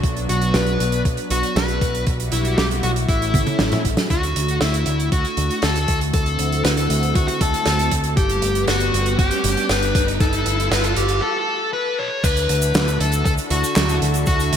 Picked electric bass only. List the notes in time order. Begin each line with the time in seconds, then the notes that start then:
0.04 B1
0.29 B1
0.54 B1
0.80 B1
1.05 B1
1.31 B1
1.56 B1
1.82 B1
2.07 B1
2.32 B1
2.58 B1
2.83 B1
3.09 A1
3.34 A1
3.60 A1
3.85 A1
4.10 D2
4.36 D2
4.61 D2
4.87 D2
5.12 D2
5.37 D2
5.63 D2
5.88 D2
6.14 D2
6.39 D2
6.65 D2
6.90 D2
7.15 D2
7.41 D2
7.66 D2
7.92 D2
8.17 G1
8.42 G1
8.68 G1
8.93 G1
9.19 G1
9.44 G1
9.70 G1
9.95 G1
10.20 G1
10.46 G1
10.71 G1
10.97 G1
12.24 D2
12.49 D2
12.75 D2
13.00 D2
13.26 D2
13.51 D2
13.76 D2
14.02 D2
14.27 D2
14.53 D2